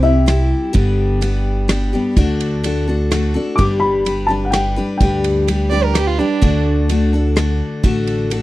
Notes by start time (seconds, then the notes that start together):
Already playing: C2
0.03 C4 E4 G4 E5
0.26 G3 C4 E4 G4, cross-stick, ride
0.73 G1 G2 D3 G3 B3 D4 G4, kick, ride
1.21 G3 B3 D4 G4, ride
1.68 G3 B3 D4 G4, cross-stick, ride
1.93 G3 B3 D4 G4
2.16 D2 D3 A3 D4 F#4 A4, kick, ride
2.40 ride
2.63 A3 D4 F#4 A4, ride
2.88 D4 F#4 A4
3.11 A3 D4 F#4 A4, cross-stick, ride
3.34 D4 F#4 A4
3.56 G1 G2 D3 G3 D4 G4 B4 D6, kick, ride
3.80 B5
4.05 G3 D4 G4 B4, ride
4.27 D4 G4 B4 A5
4.31 G3
4.45 F#5
4.51 G3 D4 G4 B4 G5, cross-stick, ride
4.76 G3 D4 G4 B4
4.98 D2 G2 D3 G3 D4 G4 G5, kick, ride
5.02 B4
5.24 ride
5.47 G3 D4 G4 B4, ride
5.70 G3 D4 G4 B4 D5
5.83 A#4
5.95 G3 D4 G4 B4, cross-stick, ride
6.07 F4
6.18 G3 D4 G4 B4
6.42 D2 D3 A3 D4 F#4 A4, kick, ride
6.89 A3 D4 F#4 A4, ride
7.13 D4 F#4 A4
7.36 A3 D4 F#4 A4, cross-stick, ride
7.83 A1 D3 A3 D4 F#4 A4, kick, ride
8.07 ride
8.30 A3 D4 F#4 A4, ride